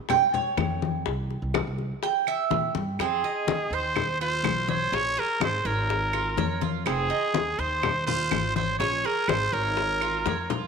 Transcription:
0.09 0.33 G5 loud
0.09 high bongo medium
0.09 high conga soft
0.09 low conga medium
0.09 claves medium
0.34 0.79 C#5 medium
0.34 high conga soft
0.34 low conga medium
0.57 1.03 F2 loud
0.57 high bongo medium
0.57 low bongo medium
0.57 high conga loud
0.57 claves medium
0.82 high bongo soft
0.82 high conga medium
1.06 1.41 C2 medium
1.06 high bongo medium
1.06 high conga soft
1.30 high bongo soft
1.30 high conga soft
1.42 1.65 C2 medium
1.54 high bongo medium
1.54 high conga loud
1.54 claves medium
1.67 1.90 C2 medium
1.78 high bongo soft
1.78 high conga soft
2.03 2.26 G5 loud
2.03 high bongo medium
2.03 high conga soft
2.27 2.72 E5 loud
2.27 high conga soft
2.27 claves medium
2.51 2.73 A#2 medium
2.51 high bongo medium
2.51 low bongo medium
2.51 high conga medium
2.75 2.97 G2 medium
2.75 high bongo soft
2.75 high conga medium
2.99 3.22 F2 medium
2.99 3.24 C4 medium
2.99 3.76 G#4 medium
2.99 high bongo medium
2.99 high conga soft
2.99 claves medium
3.24 3.71 D#4 medium
3.24 high conga soft
3.47 3.70 D#2 medium
3.47 high bongo medium
3.47 high conga loud
3.71 4.40 D#2 loud
3.71 4.19 C5 medium
3.71 4.21 C5 loud
3.71 high conga soft
3.96 high bongo medium
3.96 high conga soft
3.96 low conga medium
3.96 claves medium
4.20 4.68 F4 medium
4.20 4.66 C5 loud
4.20 high conga soft
4.43 4.90 B1 medium
4.43 high bongo medium
4.43 low bongo medium
4.43 high conga medium
4.43 claves medium
4.68 4.97 C5 medium
4.68 4.92 C#5 medium
4.68 high conga medium
4.92 5.15 A#1 loud
4.92 5.16 C#4 medium
4.92 5.21 C#5 loud
4.92 high bongo medium
4.92 high conga soft
5.17 5.64 G#4 medium
5.17 5.42 A#4 loud
5.17 high bongo soft
5.17 high conga soft
5.40 5.64 G#1 loud
5.40 5.68 C5 loud
5.40 high bongo medium
5.40 high conga loud
5.40 claves medium
5.65 6.34 G#1 loud
5.65 6.63 A#4 medium
5.65 6.12 C#5 medium
5.65 high bongo soft
5.90 high bongo medium
5.90 high conga soft
6.13 6.37 F4 medium
6.13 high bongo soft
6.13 high conga soft
6.13 claves medium
6.37 6.84 F2 medium
6.37 6.61 C#5 medium
6.37 high bongo medium
6.37 low bongo medium
6.37 high conga medium
6.61 6.85 F4 medium
6.61 high conga medium
6.86 7.09 F1 loud
6.86 7.09 C4 medium
6.86 7.61 G#4 medium
6.86 high bongo medium
6.86 high conga soft
6.86 claves medium
7.10 7.57 D#4 medium
7.10 high conga soft
7.34 7.57 D#2 medium
7.34 high bongo medium
7.34 high conga loud
7.59 8.28 D#2 loud
7.59 8.06 C5 medium
7.59 high conga soft
7.83 high bongo medium
7.83 high conga soft
7.83 low conga medium
7.83 claves medium
8.07 8.54 F4 medium
8.07 8.52 C5 loud
8.07 high conga soft
8.07 low conga medium
8.31 8.78 G#1 medium
8.31 high bongo medium
8.31 low bongo medium
8.31 high conga medium
8.31 claves medium
8.56 8.78 C5 medium
8.56 8.80 C#5 medium
8.56 high conga medium
8.79 9.03 A#1 loud
8.79 9.04 C#4 medium
8.79 9.07 C#5 loud
8.79 high bongo medium
8.79 high conga soft
9.04 9.51 G#4 medium
9.04 9.30 A#4 medium
9.04 high bongo soft
9.04 high conga soft
9.28 9.51 G#1 loud
9.28 9.55 C5 loud
9.28 high bongo medium
9.28 high conga loud
9.28 claves medium
9.52 10.22 G#1 loud
9.52 10.50 A#4 medium
9.52 10.00 C#5 medium
9.52 high bongo soft
9.77 high bongo medium
9.77 high conga soft
10.01 10.25 F4 medium
10.01 high bongo soft
10.01 high conga soft
10.01 claves medium
10.26 10.67 F2 medium
10.26 10.49 C#5 medium
10.26 high bongo medium
10.26 low bongo medium
10.26 high conga medium
10.50 10.67 F4 medium
10.50 low conga medium

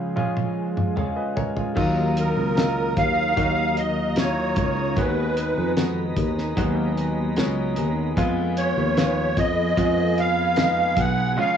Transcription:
0.00 1.73 C#2 medium
0.00 0.16 C#3 medium
0.00 1.73 C#3 medium
0.00 1.73 C#3 soft
0.00 0.16 F3 medium
0.00 1.73 F3 soft
0.00 0.16 G#3 medium
0.00 1.73 G#3 soft
0.00 0.16 C#4 medium
0.00 0.16 F4 medium
0.00 0.17 F4 medium
0.00 1.73 F4 soft
0.00 0.13 G#4 medium
0.00 0.18 G#4 medium
0.00 1.73 G#4 medium
0.16 0.95 F3 soft
0.16 0.92 G#3 medium
0.16 0.96 G#3 soft
0.16 0.92 C#4 medium
0.16 0.93 F4 medium
0.16 0.97 F4 medium
0.16 0.98 G#4 medium
0.16 high tom soft
0.37 high tom soft
0.77 mid tom soft
0.96 1.76 F3 soft
0.96 1.77 G#3 medium
0.96 1.78 F4 soft
0.96 1.78 G#4 soft
0.96 1.16 C#5 soft
0.96 1.16 F5 soft
0.96 mid tom medium
1.16 1.36 B4 soft
1.16 1.36 D#5 soft
1.36 1.56 A#4 soft
1.36 1.56 C#5 soft
1.36 floor tom medium
1.56 1.75 F4 soft
1.56 1.94 G#4 soft
1.56 floor tom medium
1.75 2.33 D#2 medium
1.75 3.42 D#3 medium
1.75 2.93 D#3 medium
1.75 2.52 F#3 medium
1.75 3.36 F#3 medium
1.75 3.36 A#3 medium
1.75 2.53 D#4 medium
1.75 3.38 D#4 medium
1.75 2.53 F4 medium
1.75 4.94 A#4 soft
1.75 4.94 F5 soft
1.75 8.13 A#5 soft
1.75 4.94 D#6 medium
1.75 kick medium
1.75 crash medium
1.80 3.38 F4 medium
2.17 2.94 A#4 medium
2.17 closed hi-hat medium
2.37 2.93 C#2 medium
2.56 3.32 F#3 medium
2.56 3.33 D#4 medium
2.56 3.33 F4 medium
2.56 snare medium
2.56 closed hi-hat medium
2.97 3.34 D#2 medium
2.97 3.80 F5 medium
2.97 kick medium
2.97 closed hi-hat medium
3.36 4.53 D#2 medium
3.36 4.59 F#3 soft
3.36 4.13 F#3 medium
3.36 4.57 A#3 medium
3.36 4.13 D#4 medium
3.36 4.57 D#4 medium
3.36 4.55 F4 medium
3.36 4.13 F#4 medium
3.36 kick medium
3.36 closed hi-hat medium
3.77 4.19 D#5 medium
3.77 closed hi-hat medium
4.16 4.93 F#3 medium
4.16 4.93 D#4 medium
4.16 4.24 E4 medium
4.16 5.00 C#5 medium
4.16 snare medium
4.16 closed hi-hat medium
4.24 4.96 F4 medium
4.56 4.94 C#2 medium
4.56 4.98 A#3 soft
4.56 4.97 D#4 soft
4.56 4.97 F4 soft
4.56 kick medium
4.56 closed hi-hat medium
4.96 5.53 D#2 medium
4.96 6.56 D#3 medium
4.96 6.13 D#3 soft
4.96 5.73 G#3 medium
4.96 5.73 B3 medium
4.96 6.57 B3 medium
4.96 6.57 D#4 medium
4.96 5.73 F#4 medium
4.96 11.57 G#4 medium
4.96 5.73 B4 medium
4.96 8.14 D#5 soft
4.96 11.33 B5 medium
4.96 kick loud
4.96 closed hi-hat medium
5.00 6.58 G#4 medium
5.37 closed hi-hat medium
5.58 6.13 F2 medium
5.77 6.53 G#3 medium
5.77 6.53 B3 medium
5.77 6.54 F#4 medium
5.77 snare medium
5.77 closed hi-hat medium
6.17 6.54 D#2 medium
6.17 kick medium
6.17 closed hi-hat medium
6.38 snare soft
6.56 7.33 D#2 medium
6.56 7.76 F#3 medium
6.56 7.33 G#3 medium
6.56 7.79 B3 medium
6.56 7.33 B3 medium
6.56 7.77 D#4 medium
6.56 7.33 F#4 medium
6.56 7.76 G#4 medium
6.56 kick medium
6.56 closed hi-hat medium
6.98 closed hi-hat medium
7.36 7.74 C#2 medium
7.36 8.13 G#3 medium
7.36 8.13 B3 medium
7.36 8.13 C#4 medium
7.36 snare medium
7.36 closed hi-hat medium
7.76 8.17 D#2 medium
7.76 8.16 B3 soft
7.76 8.18 D#4 medium
7.76 8.17 G#4 medium
7.76 closed hi-hat medium
8.16 8.73 F2 medium
8.16 9.76 F3 medium
8.16 8.93 G#3 loud
8.16 8.93 B3 medium
8.16 9.77 B3 medium
8.16 8.93 F4 loud
8.16 9.78 F4 medium
8.16 11.34 B4 soft
8.16 11.57 G#5 soft
8.16 kick medium
8.16 closed hi-hat medium
8.20 9.79 G#4 medium
8.57 9.40 C#5 medium
8.57 closed hi-hat medium
8.76 9.33 D#2 medium
8.97 9.73 G#3 medium
8.97 9.73 B3 medium
8.97 9.73 F4 medium
8.97 snare medium
8.97 closed hi-hat medium
9.37 9.74 F2 medium
9.37 10.20 D#5 medium
9.37 kick medium
9.37 closed hi-hat medium
9.77 10.93 F2 medium
9.77 11.02 F3 medium
9.77 10.53 G#3 medium
9.77 10.53 B3 medium
9.77 10.97 B3 medium
9.77 10.53 F4 medium
9.77 11.02 F4 medium
9.77 10.96 G#4 medium
9.77 kick medium
9.77 closed hi-hat medium
10.18 11.00 F5 medium
10.18 closed hi-hat medium
10.56 11.33 G#3 medium
10.56 11.33 B3 medium
10.56 11.33 D#4 medium
10.56 snare medium
10.56 closed hi-hat medium
10.96 11.34 B1 medium
10.96 11.38 B3 soft
10.96 11.37 G#4 soft
10.96 11.39 F#5 medium
10.96 kick medium
10.96 closed hi-hat medium
11.36 11.57 C#3 medium
11.36 11.57 F3 medium
11.36 11.57 G#3 medium
11.36 11.57 C#4 medium
11.36 11.57 F4 medium
11.36 11.57 C#5 medium
11.36 11.57 F5 medium
11.36 11.57 C#6 medium
11.40 11.57 G#4 medium

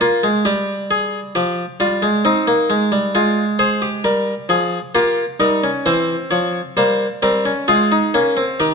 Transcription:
0.01 0.23 A#3 medium
0.01 0.29 F4 medium
0.23 0.45 G#3 medium
0.45 1.32 G3 medium
0.45 0.73 G4 medium
0.91 1.18 G#4 medium
1.35 1.63 F3 medium
1.35 1.63 G4 medium
1.80 2.02 G3 medium
1.80 2.08 F4 medium
2.02 2.24 G#3 medium
2.25 2.47 C4 medium
2.25 3.12 D#4 medium
2.47 2.69 A#3 medium
2.70 2.92 G#3 medium
2.92 3.14 G3 medium
3.15 4.02 G#3 medium
3.15 3.43 F4 medium
3.59 3.81 G#4 medium
3.59 3.87 C5 medium
3.82 4.92 G4 medium
4.04 4.33 G3 medium
4.04 4.32 A#4 medium
4.49 4.77 F3 medium
4.49 4.78 G#4 medium
4.95 5.23 A#3 medium
4.95 5.23 F4 medium
4.95 5.23 G4 medium
5.40 5.68 G3 medium
5.40 5.62 D#4 medium
5.40 5.68 A#4 medium
5.64 5.86 C#4 medium
5.86 6.14 E3 medium
5.86 6.74 C4 medium
5.86 6.14 C5 medium
6.31 6.60 F3 medium
6.31 6.59 C#5 medium
6.77 7.05 G3 medium
6.77 7.06 A#3 medium
6.77 7.05 C5 medium
7.22 7.51 G3 medium
7.22 7.45 C4 medium
7.22 7.51 A#4 medium
7.45 7.67 C#4 medium
7.68 7.96 G#3 medium
7.68 7.90 F4 medium
7.68 8.57 G#4 medium
7.92 8.13 D#4 medium
8.14 8.42 A#3 medium
8.14 8.36 C#4 medium
8.37 8.59 C4 medium
8.60 8.74 D#3 medium
8.60 8.74 G4 medium
8.60 8.74 A#4 medium

